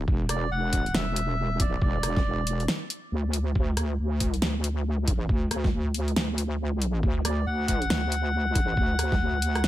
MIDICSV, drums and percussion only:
0, 0, Header, 1, 2, 480
1, 0, Start_track
1, 0, Tempo, 434783
1, 85, Time_signature, 4, 2, 24, 8
1, 10685, End_track
2, 0, Start_track
2, 0, Title_t, "Drums"
2, 86, Note_on_c, 9, 36, 127
2, 196, Note_off_c, 9, 36, 0
2, 322, Note_on_c, 9, 37, 52
2, 322, Note_on_c, 9, 42, 82
2, 432, Note_off_c, 9, 37, 0
2, 432, Note_off_c, 9, 42, 0
2, 803, Note_on_c, 9, 42, 83
2, 805, Note_on_c, 9, 36, 66
2, 913, Note_off_c, 9, 42, 0
2, 915, Note_off_c, 9, 36, 0
2, 953, Note_on_c, 9, 42, 37
2, 1043, Note_on_c, 9, 38, 127
2, 1063, Note_off_c, 9, 42, 0
2, 1154, Note_off_c, 9, 38, 0
2, 1285, Note_on_c, 9, 42, 84
2, 1395, Note_off_c, 9, 42, 0
2, 1764, Note_on_c, 9, 42, 81
2, 1765, Note_on_c, 9, 36, 113
2, 1874, Note_off_c, 9, 42, 0
2, 1875, Note_off_c, 9, 36, 0
2, 2005, Note_on_c, 9, 36, 126
2, 2115, Note_off_c, 9, 36, 0
2, 2244, Note_on_c, 9, 37, 52
2, 2244, Note_on_c, 9, 42, 77
2, 2354, Note_off_c, 9, 37, 0
2, 2354, Note_off_c, 9, 42, 0
2, 2390, Note_on_c, 9, 38, 36
2, 2391, Note_on_c, 9, 36, 112
2, 2501, Note_off_c, 9, 36, 0
2, 2501, Note_off_c, 9, 38, 0
2, 2725, Note_on_c, 9, 42, 81
2, 2835, Note_off_c, 9, 42, 0
2, 2871, Note_on_c, 9, 42, 36
2, 2963, Note_on_c, 9, 38, 121
2, 2981, Note_off_c, 9, 42, 0
2, 3073, Note_off_c, 9, 38, 0
2, 3203, Note_on_c, 9, 42, 78
2, 3314, Note_off_c, 9, 42, 0
2, 3681, Note_on_c, 9, 42, 80
2, 3792, Note_off_c, 9, 42, 0
2, 3924, Note_on_c, 9, 36, 121
2, 4034, Note_off_c, 9, 36, 0
2, 4162, Note_on_c, 9, 37, 53
2, 4162, Note_on_c, 9, 42, 77
2, 4272, Note_off_c, 9, 37, 0
2, 4272, Note_off_c, 9, 42, 0
2, 4641, Note_on_c, 9, 42, 77
2, 4643, Note_on_c, 9, 36, 61
2, 4752, Note_off_c, 9, 42, 0
2, 4754, Note_off_c, 9, 36, 0
2, 4788, Note_on_c, 9, 42, 36
2, 4881, Note_on_c, 9, 38, 117
2, 4898, Note_off_c, 9, 42, 0
2, 4991, Note_off_c, 9, 38, 0
2, 5122, Note_on_c, 9, 42, 80
2, 5232, Note_off_c, 9, 42, 0
2, 5603, Note_on_c, 9, 36, 104
2, 5603, Note_on_c, 9, 42, 78
2, 5713, Note_off_c, 9, 36, 0
2, 5714, Note_off_c, 9, 42, 0
2, 5843, Note_on_c, 9, 36, 118
2, 5954, Note_off_c, 9, 36, 0
2, 6083, Note_on_c, 9, 37, 54
2, 6083, Note_on_c, 9, 42, 75
2, 6194, Note_off_c, 9, 37, 0
2, 6194, Note_off_c, 9, 42, 0
2, 6229, Note_on_c, 9, 36, 104
2, 6230, Note_on_c, 9, 38, 35
2, 6340, Note_off_c, 9, 36, 0
2, 6340, Note_off_c, 9, 38, 0
2, 6562, Note_on_c, 9, 42, 75
2, 6673, Note_off_c, 9, 42, 0
2, 6711, Note_on_c, 9, 42, 35
2, 6805, Note_on_c, 9, 38, 115
2, 6822, Note_off_c, 9, 42, 0
2, 6916, Note_off_c, 9, 38, 0
2, 7043, Note_on_c, 9, 42, 75
2, 7153, Note_off_c, 9, 42, 0
2, 7525, Note_on_c, 9, 42, 77
2, 7635, Note_off_c, 9, 42, 0
2, 7763, Note_on_c, 9, 36, 112
2, 7873, Note_off_c, 9, 36, 0
2, 8003, Note_on_c, 9, 37, 57
2, 8003, Note_on_c, 9, 42, 78
2, 8113, Note_off_c, 9, 37, 0
2, 8113, Note_off_c, 9, 42, 0
2, 8482, Note_on_c, 9, 42, 80
2, 8483, Note_on_c, 9, 36, 60
2, 8593, Note_off_c, 9, 42, 0
2, 8594, Note_off_c, 9, 36, 0
2, 8631, Note_on_c, 9, 42, 36
2, 8724, Note_on_c, 9, 38, 118
2, 8741, Note_off_c, 9, 42, 0
2, 8835, Note_off_c, 9, 38, 0
2, 8964, Note_on_c, 9, 42, 77
2, 9074, Note_off_c, 9, 42, 0
2, 9443, Note_on_c, 9, 36, 103
2, 9444, Note_on_c, 9, 42, 81
2, 9554, Note_off_c, 9, 36, 0
2, 9555, Note_off_c, 9, 42, 0
2, 9683, Note_on_c, 9, 36, 119
2, 9794, Note_off_c, 9, 36, 0
2, 9924, Note_on_c, 9, 37, 54
2, 9924, Note_on_c, 9, 42, 78
2, 10034, Note_off_c, 9, 37, 0
2, 10034, Note_off_c, 9, 42, 0
2, 10070, Note_on_c, 9, 36, 105
2, 10070, Note_on_c, 9, 38, 34
2, 10180, Note_off_c, 9, 36, 0
2, 10180, Note_off_c, 9, 38, 0
2, 10402, Note_on_c, 9, 42, 82
2, 10512, Note_off_c, 9, 42, 0
2, 10548, Note_on_c, 9, 37, 64
2, 10548, Note_on_c, 9, 42, 36
2, 10641, Note_on_c, 9, 38, 118
2, 10658, Note_off_c, 9, 37, 0
2, 10658, Note_off_c, 9, 42, 0
2, 10685, Note_off_c, 9, 38, 0
2, 10685, End_track
0, 0, End_of_file